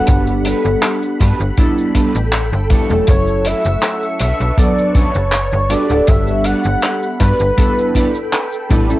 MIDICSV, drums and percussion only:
0, 0, Header, 1, 2, 480
1, 0, Start_track
1, 0, Tempo, 750000
1, 51, Time_signature, 4, 2, 24, 8
1, 5757, End_track
2, 0, Start_track
2, 0, Title_t, "Drums"
2, 44, Note_on_c, 9, 42, 85
2, 49, Note_on_c, 9, 69, 60
2, 53, Note_on_c, 9, 36, 127
2, 108, Note_off_c, 9, 42, 0
2, 113, Note_off_c, 9, 69, 0
2, 117, Note_off_c, 9, 36, 0
2, 171, Note_on_c, 9, 69, 46
2, 235, Note_off_c, 9, 69, 0
2, 287, Note_on_c, 9, 42, 79
2, 351, Note_off_c, 9, 42, 0
2, 416, Note_on_c, 9, 69, 63
2, 480, Note_off_c, 9, 69, 0
2, 529, Note_on_c, 9, 39, 119
2, 532, Note_on_c, 9, 42, 89
2, 533, Note_on_c, 9, 69, 58
2, 593, Note_off_c, 9, 39, 0
2, 596, Note_off_c, 9, 42, 0
2, 597, Note_off_c, 9, 69, 0
2, 654, Note_on_c, 9, 69, 46
2, 718, Note_off_c, 9, 69, 0
2, 771, Note_on_c, 9, 36, 62
2, 773, Note_on_c, 9, 42, 83
2, 835, Note_off_c, 9, 36, 0
2, 837, Note_off_c, 9, 42, 0
2, 896, Note_on_c, 9, 69, 74
2, 960, Note_off_c, 9, 69, 0
2, 1008, Note_on_c, 9, 42, 87
2, 1009, Note_on_c, 9, 36, 117
2, 1009, Note_on_c, 9, 69, 60
2, 1072, Note_off_c, 9, 42, 0
2, 1073, Note_off_c, 9, 36, 0
2, 1073, Note_off_c, 9, 69, 0
2, 1140, Note_on_c, 9, 69, 50
2, 1204, Note_off_c, 9, 69, 0
2, 1247, Note_on_c, 9, 36, 61
2, 1247, Note_on_c, 9, 42, 81
2, 1311, Note_off_c, 9, 36, 0
2, 1311, Note_off_c, 9, 42, 0
2, 1376, Note_on_c, 9, 69, 68
2, 1440, Note_off_c, 9, 69, 0
2, 1486, Note_on_c, 9, 69, 63
2, 1488, Note_on_c, 9, 39, 114
2, 1491, Note_on_c, 9, 42, 84
2, 1550, Note_off_c, 9, 69, 0
2, 1552, Note_off_c, 9, 39, 0
2, 1555, Note_off_c, 9, 42, 0
2, 1617, Note_on_c, 9, 69, 44
2, 1681, Note_off_c, 9, 69, 0
2, 1727, Note_on_c, 9, 42, 79
2, 1731, Note_on_c, 9, 36, 109
2, 1791, Note_off_c, 9, 42, 0
2, 1795, Note_off_c, 9, 36, 0
2, 1855, Note_on_c, 9, 69, 64
2, 1919, Note_off_c, 9, 69, 0
2, 1965, Note_on_c, 9, 42, 93
2, 1967, Note_on_c, 9, 69, 69
2, 1973, Note_on_c, 9, 36, 125
2, 2029, Note_off_c, 9, 42, 0
2, 2031, Note_off_c, 9, 69, 0
2, 2037, Note_off_c, 9, 36, 0
2, 2093, Note_on_c, 9, 69, 49
2, 2157, Note_off_c, 9, 69, 0
2, 2206, Note_on_c, 9, 42, 83
2, 2270, Note_off_c, 9, 42, 0
2, 2334, Note_on_c, 9, 69, 76
2, 2398, Note_off_c, 9, 69, 0
2, 2446, Note_on_c, 9, 42, 90
2, 2448, Note_on_c, 9, 39, 117
2, 2450, Note_on_c, 9, 69, 59
2, 2510, Note_off_c, 9, 42, 0
2, 2512, Note_off_c, 9, 39, 0
2, 2514, Note_off_c, 9, 69, 0
2, 2577, Note_on_c, 9, 69, 46
2, 2641, Note_off_c, 9, 69, 0
2, 2685, Note_on_c, 9, 42, 84
2, 2749, Note_off_c, 9, 42, 0
2, 2819, Note_on_c, 9, 69, 66
2, 2883, Note_off_c, 9, 69, 0
2, 2929, Note_on_c, 9, 36, 120
2, 2930, Note_on_c, 9, 42, 87
2, 2931, Note_on_c, 9, 69, 63
2, 2993, Note_off_c, 9, 36, 0
2, 2994, Note_off_c, 9, 42, 0
2, 2995, Note_off_c, 9, 69, 0
2, 3060, Note_on_c, 9, 69, 47
2, 3124, Note_off_c, 9, 69, 0
2, 3168, Note_on_c, 9, 36, 104
2, 3169, Note_on_c, 9, 42, 73
2, 3232, Note_off_c, 9, 36, 0
2, 3233, Note_off_c, 9, 42, 0
2, 3294, Note_on_c, 9, 69, 67
2, 3358, Note_off_c, 9, 69, 0
2, 3405, Note_on_c, 9, 69, 70
2, 3406, Note_on_c, 9, 39, 105
2, 3407, Note_on_c, 9, 42, 92
2, 3469, Note_off_c, 9, 69, 0
2, 3470, Note_off_c, 9, 39, 0
2, 3471, Note_off_c, 9, 42, 0
2, 3533, Note_on_c, 9, 69, 45
2, 3597, Note_off_c, 9, 69, 0
2, 3649, Note_on_c, 9, 42, 80
2, 3713, Note_off_c, 9, 42, 0
2, 3774, Note_on_c, 9, 69, 73
2, 3838, Note_off_c, 9, 69, 0
2, 3887, Note_on_c, 9, 42, 84
2, 3888, Note_on_c, 9, 69, 59
2, 3893, Note_on_c, 9, 36, 112
2, 3951, Note_off_c, 9, 42, 0
2, 3952, Note_off_c, 9, 69, 0
2, 3957, Note_off_c, 9, 36, 0
2, 4015, Note_on_c, 9, 69, 50
2, 4079, Note_off_c, 9, 69, 0
2, 4124, Note_on_c, 9, 42, 82
2, 4188, Note_off_c, 9, 42, 0
2, 4252, Note_on_c, 9, 69, 80
2, 4316, Note_off_c, 9, 69, 0
2, 4363, Note_on_c, 9, 69, 67
2, 4367, Note_on_c, 9, 42, 90
2, 4372, Note_on_c, 9, 39, 127
2, 4427, Note_off_c, 9, 69, 0
2, 4431, Note_off_c, 9, 42, 0
2, 4436, Note_off_c, 9, 39, 0
2, 4496, Note_on_c, 9, 69, 50
2, 4560, Note_off_c, 9, 69, 0
2, 4608, Note_on_c, 9, 42, 80
2, 4611, Note_on_c, 9, 36, 64
2, 4672, Note_off_c, 9, 42, 0
2, 4675, Note_off_c, 9, 36, 0
2, 4732, Note_on_c, 9, 69, 74
2, 4796, Note_off_c, 9, 69, 0
2, 4850, Note_on_c, 9, 42, 89
2, 4851, Note_on_c, 9, 69, 65
2, 4852, Note_on_c, 9, 36, 109
2, 4914, Note_off_c, 9, 42, 0
2, 4915, Note_off_c, 9, 69, 0
2, 4916, Note_off_c, 9, 36, 0
2, 4982, Note_on_c, 9, 69, 49
2, 5046, Note_off_c, 9, 69, 0
2, 5088, Note_on_c, 9, 36, 55
2, 5093, Note_on_c, 9, 42, 81
2, 5152, Note_off_c, 9, 36, 0
2, 5157, Note_off_c, 9, 42, 0
2, 5214, Note_on_c, 9, 69, 70
2, 5278, Note_off_c, 9, 69, 0
2, 5329, Note_on_c, 9, 42, 84
2, 5329, Note_on_c, 9, 69, 60
2, 5333, Note_on_c, 9, 39, 110
2, 5393, Note_off_c, 9, 42, 0
2, 5393, Note_off_c, 9, 69, 0
2, 5397, Note_off_c, 9, 39, 0
2, 5456, Note_on_c, 9, 69, 50
2, 5520, Note_off_c, 9, 69, 0
2, 5572, Note_on_c, 9, 36, 97
2, 5573, Note_on_c, 9, 42, 71
2, 5636, Note_off_c, 9, 36, 0
2, 5637, Note_off_c, 9, 42, 0
2, 5695, Note_on_c, 9, 69, 75
2, 5757, Note_off_c, 9, 69, 0
2, 5757, End_track
0, 0, End_of_file